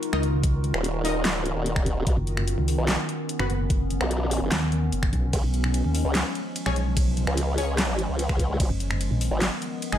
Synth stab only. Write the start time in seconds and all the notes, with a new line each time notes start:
0.13 D#4 A#4 D#5
1.05 D#4 A#4 D#5
3.39 B3 F#4 B4
6.66 C#4 G#4 C#5
7.58 C#4 G#4 C#5
9.92 G#3 D#4 G#4